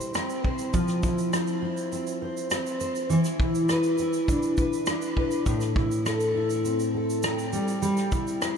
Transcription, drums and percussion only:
0.01 shaker soft
0.14 cross-stick medium
0.14 shaker medium
0.30 shaker soft
0.44 kick medium
0.58 shaker soft
0.73 kick medium
0.73 shaker medium
0.88 cross-stick soft
0.88 shaker soft
1.03 kick medium
1.03 shaker soft
1.18 shaker soft
1.33 cross-stick medium
1.33 shaker medium
1.47 shaker soft
1.77 shaker soft
1.92 shaker soft
2.07 shaker soft
2.37 shaker soft
2.50 cross-stick medium
2.50 shaker medium
2.66 shaker soft
2.80 shaker medium
2.95 shaker soft
3.10 shaker medium
3.24 cross-stick soft
3.24 shaker soft
3.40 kick medium
3.55 shaker soft
3.69 cross-stick medium
3.69 shaker medium
3.83 shaker soft
3.98 shaker soft
4.13 shaker soft
4.28 kick medium
4.28 shaker soft
4.42 shaker soft
4.57 kick medium
4.57 shaker soft
4.73 shaker soft
4.86 cross-stick loud
4.86 shaker medium
5.02 shaker soft
5.17 kick medium
5.31 shaker soft
5.46 kick medium
5.46 shaker medium
5.61 cross-stick soft
5.61 shaker soft
5.76 kick medium
5.91 shaker soft
6.06 cross-stick medium
6.06 shaker medium
6.20 shaker soft
6.50 shaker soft
6.65 shaker soft
6.80 shaker soft
7.10 shaker soft
7.23 cross-stick loud
7.23 shaker medium
7.39 shaker soft
7.53 shaker medium
7.68 shaker soft
7.83 shaker medium
7.97 cross-stick soft
7.97 shaker soft
8.12 kick medium
8.12 shaker soft
8.27 shaker soft
8.42 cross-stick medium
8.42 shaker medium

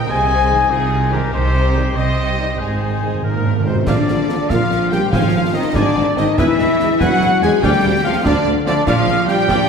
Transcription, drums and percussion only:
3.87 concert bass drum medium
3.87 snare medium
3.87 crash medium
4.08 snare medium
4.29 snare medium
4.50 concert bass drum medium
4.50 snare medium
4.71 snare medium
4.92 snare medium
5.13 concert bass drum medium
5.13 snare medium
5.75 concert bass drum medium
5.75 snare medium
6.17 snare medium
6.38 concert bass drum medium
6.38 snare medium
6.38 crash soft
6.59 snare medium
6.80 snare medium
7.01 concert bass drum medium
7.01 snare medium
7.21 snare medium
7.42 snare medium
7.63 concert bass drum loud
7.63 snare medium
8.26 concert bass drum medium
8.26 snare medium
8.67 snare medium
8.87 concert bass drum medium
8.87 snare medium
8.87 crash soft
9.08 snare medium
9.28 snare medium
9.49 concert bass drum medium
9.49 snare medium

